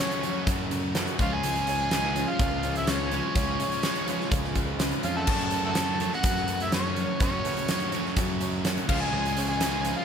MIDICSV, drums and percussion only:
0, 0, Header, 1, 2, 480
1, 0, Start_track
1, 0, Key_signature, 3, "minor"
1, 0, Tempo, 480769
1, 1432, Time_signature, 4, 2, 24, 8
1, 10033, End_track
2, 0, Start_track
2, 0, Title_t, "Drums"
2, 114, Note_on_c, 9, 42, 48
2, 214, Note_off_c, 9, 42, 0
2, 233, Note_on_c, 9, 42, 80
2, 332, Note_off_c, 9, 42, 0
2, 469, Note_on_c, 9, 36, 122
2, 469, Note_on_c, 9, 42, 112
2, 569, Note_off_c, 9, 36, 0
2, 569, Note_off_c, 9, 42, 0
2, 710, Note_on_c, 9, 42, 80
2, 810, Note_off_c, 9, 42, 0
2, 947, Note_on_c, 9, 42, 99
2, 950, Note_on_c, 9, 38, 104
2, 1047, Note_off_c, 9, 42, 0
2, 1050, Note_off_c, 9, 38, 0
2, 1072, Note_on_c, 9, 42, 48
2, 1172, Note_off_c, 9, 42, 0
2, 1190, Note_on_c, 9, 36, 102
2, 1190, Note_on_c, 9, 42, 79
2, 1290, Note_off_c, 9, 36, 0
2, 1290, Note_off_c, 9, 42, 0
2, 1432, Note_on_c, 9, 42, 101
2, 1531, Note_off_c, 9, 42, 0
2, 1551, Note_on_c, 9, 42, 48
2, 1651, Note_off_c, 9, 42, 0
2, 1668, Note_on_c, 9, 42, 80
2, 1768, Note_off_c, 9, 42, 0
2, 1909, Note_on_c, 9, 42, 95
2, 1912, Note_on_c, 9, 38, 111
2, 2009, Note_off_c, 9, 42, 0
2, 2012, Note_off_c, 9, 38, 0
2, 2155, Note_on_c, 9, 42, 72
2, 2255, Note_off_c, 9, 42, 0
2, 2391, Note_on_c, 9, 36, 125
2, 2393, Note_on_c, 9, 42, 100
2, 2491, Note_off_c, 9, 36, 0
2, 2493, Note_off_c, 9, 42, 0
2, 2627, Note_on_c, 9, 42, 72
2, 2726, Note_off_c, 9, 42, 0
2, 2751, Note_on_c, 9, 42, 49
2, 2851, Note_off_c, 9, 42, 0
2, 2868, Note_on_c, 9, 42, 96
2, 2871, Note_on_c, 9, 38, 110
2, 2968, Note_off_c, 9, 42, 0
2, 2971, Note_off_c, 9, 38, 0
2, 3110, Note_on_c, 9, 42, 71
2, 3210, Note_off_c, 9, 42, 0
2, 3348, Note_on_c, 9, 42, 98
2, 3351, Note_on_c, 9, 36, 110
2, 3448, Note_off_c, 9, 42, 0
2, 3450, Note_off_c, 9, 36, 0
2, 3592, Note_on_c, 9, 42, 81
2, 3691, Note_off_c, 9, 42, 0
2, 3714, Note_on_c, 9, 42, 53
2, 3814, Note_off_c, 9, 42, 0
2, 3825, Note_on_c, 9, 42, 97
2, 3828, Note_on_c, 9, 38, 113
2, 3925, Note_off_c, 9, 42, 0
2, 3928, Note_off_c, 9, 38, 0
2, 3947, Note_on_c, 9, 42, 49
2, 4047, Note_off_c, 9, 42, 0
2, 4070, Note_on_c, 9, 42, 80
2, 4170, Note_off_c, 9, 42, 0
2, 4196, Note_on_c, 9, 38, 34
2, 4296, Note_off_c, 9, 38, 0
2, 4309, Note_on_c, 9, 36, 122
2, 4309, Note_on_c, 9, 42, 114
2, 4409, Note_off_c, 9, 36, 0
2, 4409, Note_off_c, 9, 42, 0
2, 4434, Note_on_c, 9, 38, 32
2, 4534, Note_off_c, 9, 38, 0
2, 4546, Note_on_c, 9, 42, 79
2, 4548, Note_on_c, 9, 36, 82
2, 4646, Note_off_c, 9, 42, 0
2, 4648, Note_off_c, 9, 36, 0
2, 4788, Note_on_c, 9, 42, 109
2, 4791, Note_on_c, 9, 38, 109
2, 4888, Note_off_c, 9, 42, 0
2, 4891, Note_off_c, 9, 38, 0
2, 4907, Note_on_c, 9, 42, 45
2, 5006, Note_off_c, 9, 42, 0
2, 5024, Note_on_c, 9, 42, 85
2, 5124, Note_off_c, 9, 42, 0
2, 5261, Note_on_c, 9, 49, 101
2, 5267, Note_on_c, 9, 36, 116
2, 5361, Note_off_c, 9, 49, 0
2, 5367, Note_off_c, 9, 36, 0
2, 5380, Note_on_c, 9, 42, 48
2, 5480, Note_off_c, 9, 42, 0
2, 5496, Note_on_c, 9, 42, 83
2, 5596, Note_off_c, 9, 42, 0
2, 5742, Note_on_c, 9, 42, 99
2, 5745, Note_on_c, 9, 38, 112
2, 5842, Note_off_c, 9, 42, 0
2, 5845, Note_off_c, 9, 38, 0
2, 5991, Note_on_c, 9, 42, 79
2, 6091, Note_off_c, 9, 42, 0
2, 6114, Note_on_c, 9, 38, 32
2, 6214, Note_off_c, 9, 38, 0
2, 6224, Note_on_c, 9, 42, 103
2, 6229, Note_on_c, 9, 36, 122
2, 6324, Note_off_c, 9, 42, 0
2, 6329, Note_off_c, 9, 36, 0
2, 6353, Note_on_c, 9, 38, 31
2, 6453, Note_off_c, 9, 38, 0
2, 6468, Note_on_c, 9, 42, 68
2, 6567, Note_off_c, 9, 42, 0
2, 6592, Note_on_c, 9, 42, 51
2, 6691, Note_off_c, 9, 42, 0
2, 6711, Note_on_c, 9, 42, 102
2, 6714, Note_on_c, 9, 38, 109
2, 6810, Note_off_c, 9, 42, 0
2, 6813, Note_off_c, 9, 38, 0
2, 6953, Note_on_c, 9, 42, 71
2, 7053, Note_off_c, 9, 42, 0
2, 7190, Note_on_c, 9, 42, 95
2, 7193, Note_on_c, 9, 36, 113
2, 7290, Note_off_c, 9, 42, 0
2, 7293, Note_off_c, 9, 36, 0
2, 7436, Note_on_c, 9, 42, 77
2, 7536, Note_off_c, 9, 42, 0
2, 7555, Note_on_c, 9, 42, 51
2, 7655, Note_off_c, 9, 42, 0
2, 7671, Note_on_c, 9, 42, 101
2, 7674, Note_on_c, 9, 38, 109
2, 7771, Note_off_c, 9, 42, 0
2, 7774, Note_off_c, 9, 38, 0
2, 7789, Note_on_c, 9, 42, 49
2, 7889, Note_off_c, 9, 42, 0
2, 7910, Note_on_c, 9, 42, 81
2, 8010, Note_off_c, 9, 42, 0
2, 8041, Note_on_c, 9, 38, 32
2, 8141, Note_off_c, 9, 38, 0
2, 8151, Note_on_c, 9, 42, 110
2, 8154, Note_on_c, 9, 36, 116
2, 8251, Note_off_c, 9, 42, 0
2, 8254, Note_off_c, 9, 36, 0
2, 8393, Note_on_c, 9, 42, 78
2, 8493, Note_off_c, 9, 42, 0
2, 8633, Note_on_c, 9, 42, 101
2, 8636, Note_on_c, 9, 38, 107
2, 8732, Note_off_c, 9, 42, 0
2, 8735, Note_off_c, 9, 38, 0
2, 8759, Note_on_c, 9, 42, 50
2, 8859, Note_off_c, 9, 42, 0
2, 8875, Note_on_c, 9, 36, 110
2, 8877, Note_on_c, 9, 49, 108
2, 8975, Note_off_c, 9, 36, 0
2, 8977, Note_off_c, 9, 49, 0
2, 9240, Note_on_c, 9, 42, 53
2, 9340, Note_off_c, 9, 42, 0
2, 9352, Note_on_c, 9, 42, 83
2, 9451, Note_off_c, 9, 42, 0
2, 9591, Note_on_c, 9, 42, 108
2, 9594, Note_on_c, 9, 38, 115
2, 9691, Note_off_c, 9, 42, 0
2, 9694, Note_off_c, 9, 38, 0
2, 9830, Note_on_c, 9, 42, 85
2, 9930, Note_off_c, 9, 42, 0
2, 10033, End_track
0, 0, End_of_file